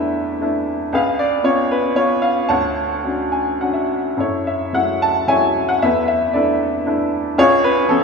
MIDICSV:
0, 0, Header, 1, 2, 480
1, 0, Start_track
1, 0, Key_signature, 3, "minor"
1, 0, Tempo, 510638
1, 865, Time_signature, 3, 2, 24, 8
1, 1833, Tempo, 552995
1, 5193, Tempo, 516796
1, 7251, End_track
2, 0, Start_track
2, 0, Title_t, "Upright piano"
2, 0, Program_c, 0, 0
2, 0, Control_c, 0, 64, 127
2, 0, Note_on_c, 0, 40, 60
2, 0, Note_on_c, 0, 57, 43
2, 0, Note_on_c, 0, 62, 42
2, 0, Note_on_c, 0, 64, 42
2, 0, Note_on_c, 0, 69, 58
2, 0, Note_on_c, 0, 71, 60
2, 0, Note_on_c, 0, 76, 81
2, 372, Note_off_c, 0, 57, 0
2, 376, Note_off_c, 0, 62, 0
2, 380, Note_off_c, 0, 64, 0
2, 386, Note_on_c, 0, 57, 47
2, 393, Note_on_c, 0, 62, 42
2, 396, Note_on_c, 0, 64, 54
2, 598, Note_off_c, 0, 71, 0
2, 599, Note_off_c, 0, 69, 0
2, 604, Note_off_c, 0, 76, 0
2, 826, Note_off_c, 0, 40, 0
2, 848, Note_off_c, 0, 57, 0
2, 852, Note_off_c, 0, 62, 0
2, 854, Note_off_c, 0, 64, 0
2, 871, Note_on_c, 0, 37, 71
2, 879, Control_c, 0, 64, 0
2, 883, Note_on_c, 0, 68, 59
2, 884, Note_on_c, 0, 71, 56
2, 891, Note_on_c, 0, 77, 80
2, 1030, Control_c, 0, 64, 127
2, 1120, Note_on_c, 0, 74, 78
2, 1121, Note_off_c, 0, 77, 0
2, 1335, Note_off_c, 0, 74, 0
2, 1346, Note_on_c, 0, 59, 43
2, 1351, Note_on_c, 0, 61, 43
2, 1354, Note_on_c, 0, 65, 53
2, 1359, Note_on_c, 0, 73, 82
2, 1557, Note_off_c, 0, 68, 0
2, 1558, Note_off_c, 0, 71, 0
2, 1602, Note_off_c, 0, 73, 0
2, 1611, Note_on_c, 0, 71, 75
2, 1820, Note_off_c, 0, 59, 0
2, 1823, Note_off_c, 0, 61, 0
2, 1825, Note_off_c, 0, 65, 0
2, 1837, Note_on_c, 0, 59, 47
2, 1841, Note_on_c, 0, 61, 43
2, 1843, Note_on_c, 0, 73, 80
2, 1847, Note_on_c, 0, 65, 54
2, 1851, Note_off_c, 0, 71, 0
2, 2054, Note_off_c, 0, 73, 0
2, 2066, Note_on_c, 0, 77, 80
2, 2267, Note_off_c, 0, 37, 0
2, 2284, Note_off_c, 0, 77, 0
2, 2287, Note_off_c, 0, 59, 0
2, 2289, Note_off_c, 0, 61, 0
2, 2292, Note_off_c, 0, 65, 0
2, 2298, Note_on_c, 0, 81, 74
2, 2303, Note_on_c, 0, 38, 63
2, 2307, Note_on_c, 0, 73, 55
2, 2309, Note_on_c, 0, 78, 55
2, 2310, Control_c, 0, 64, 0
2, 2444, Control_c, 0, 64, 127
2, 2780, Note_on_c, 0, 61, 35
2, 2785, Note_on_c, 0, 62, 33
2, 2787, Note_on_c, 0, 66, 43
2, 3022, Note_on_c, 0, 80, 55
2, 3248, Note_off_c, 0, 80, 0
2, 3251, Note_off_c, 0, 61, 0
2, 3254, Note_off_c, 0, 62, 0
2, 3256, Note_off_c, 0, 66, 0
2, 3260, Note_off_c, 0, 78, 0
2, 3267, Note_on_c, 0, 61, 41
2, 3272, Note_on_c, 0, 66, 43
2, 3273, Note_on_c, 0, 78, 52
2, 3274, Note_on_c, 0, 62, 31
2, 3383, Note_off_c, 0, 78, 0
2, 3383, Note_on_c, 0, 76, 44
2, 3474, Note_off_c, 0, 81, 0
2, 3479, Note_off_c, 0, 73, 0
2, 3721, Note_off_c, 0, 38, 0
2, 3726, Note_off_c, 0, 76, 0
2, 3740, Note_off_c, 0, 61, 0
2, 3743, Note_off_c, 0, 66, 0
2, 3744, Note_off_c, 0, 62, 0
2, 3760, Note_on_c, 0, 42, 52
2, 3765, Control_c, 0, 64, 0
2, 3776, Note_on_c, 0, 69, 50
2, 3777, Note_on_c, 0, 64, 46
2, 3789, Note_on_c, 0, 73, 62
2, 3907, Control_c, 0, 64, 127
2, 4021, Note_on_c, 0, 76, 60
2, 4022, Note_off_c, 0, 73, 0
2, 4238, Note_off_c, 0, 64, 0
2, 4246, Note_on_c, 0, 54, 38
2, 4251, Note_on_c, 0, 64, 44
2, 4252, Note_on_c, 0, 57, 36
2, 4253, Note_on_c, 0, 56, 35
2, 4259, Note_on_c, 0, 78, 76
2, 4260, Note_off_c, 0, 76, 0
2, 4459, Note_off_c, 0, 69, 0
2, 4499, Note_off_c, 0, 78, 0
2, 4500, Note_on_c, 0, 81, 84
2, 4707, Note_off_c, 0, 54, 0
2, 4712, Note_off_c, 0, 57, 0
2, 4712, Note_off_c, 0, 64, 0
2, 4713, Note_off_c, 0, 56, 0
2, 4720, Note_on_c, 0, 54, 46
2, 4725, Note_on_c, 0, 57, 38
2, 4726, Note_on_c, 0, 56, 38
2, 4726, Note_on_c, 0, 76, 59
2, 4726, Note_on_c, 0, 80, 85
2, 4730, Note_on_c, 0, 73, 59
2, 4732, Note_on_c, 0, 64, 48
2, 4737, Note_off_c, 0, 81, 0
2, 5076, Note_on_c, 0, 78, 77
2, 5088, Note_off_c, 0, 80, 0
2, 5161, Note_off_c, 0, 42, 0
2, 5162, Note_off_c, 0, 76, 0
2, 5164, Note_off_c, 0, 73, 0
2, 5178, Note_off_c, 0, 54, 0
2, 5180, Note_off_c, 0, 57, 0
2, 5181, Note_off_c, 0, 56, 0
2, 5184, Note_off_c, 0, 64, 0
2, 5185, Note_off_c, 0, 78, 0
2, 5196, Note_on_c, 0, 76, 80
2, 5197, Note_on_c, 0, 40, 64
2, 5203, Control_c, 0, 64, 0
2, 5213, Note_on_c, 0, 69, 58
2, 5216, Note_on_c, 0, 71, 62
2, 5346, Control_c, 0, 64, 127
2, 5419, Note_off_c, 0, 76, 0
2, 5433, Note_on_c, 0, 76, 71
2, 5659, Note_off_c, 0, 76, 0
2, 5670, Note_off_c, 0, 71, 0
2, 5671, Note_on_c, 0, 74, 64
2, 5677, Note_off_c, 0, 69, 0
2, 5678, Note_on_c, 0, 57, 49
2, 5684, Note_on_c, 0, 62, 42
2, 5684, Note_on_c, 0, 71, 47
2, 5691, Note_on_c, 0, 64, 51
2, 5691, Note_on_c, 0, 69, 51
2, 6141, Note_off_c, 0, 57, 0
2, 6144, Note_off_c, 0, 62, 0
2, 6147, Note_off_c, 0, 64, 0
2, 6158, Note_on_c, 0, 57, 55
2, 6166, Note_on_c, 0, 62, 48
2, 6168, Note_on_c, 0, 64, 54
2, 6355, Note_off_c, 0, 74, 0
2, 6362, Note_off_c, 0, 71, 0
2, 6365, Note_off_c, 0, 69, 0
2, 6602, Note_off_c, 0, 40, 0
2, 6624, Note_off_c, 0, 57, 0
2, 6628, Note_off_c, 0, 62, 0
2, 6628, Note_off_c, 0, 64, 0
2, 6642, Note_on_c, 0, 65, 72
2, 6644, Note_on_c, 0, 37, 74
2, 6645, Note_on_c, 0, 68, 80
2, 6650, Control_c, 0, 64, 0
2, 6650, Note_on_c, 0, 73, 108
2, 6798, Control_c, 0, 64, 127
2, 6884, Note_on_c, 0, 71, 96
2, 6890, Note_off_c, 0, 73, 0
2, 7108, Note_on_c, 0, 53, 51
2, 7115, Note_on_c, 0, 61, 55
2, 7116, Note_on_c, 0, 59, 49
2, 7116, Note_on_c, 0, 69, 89
2, 7125, Note_off_c, 0, 71, 0
2, 7251, Note_off_c, 0, 37, 0
2, 7251, Note_off_c, 0, 53, 0
2, 7251, Note_off_c, 0, 59, 0
2, 7251, Note_off_c, 0, 61, 0
2, 7251, Note_off_c, 0, 65, 0
2, 7251, Note_off_c, 0, 68, 0
2, 7251, Note_off_c, 0, 69, 0
2, 7251, End_track
0, 0, End_of_file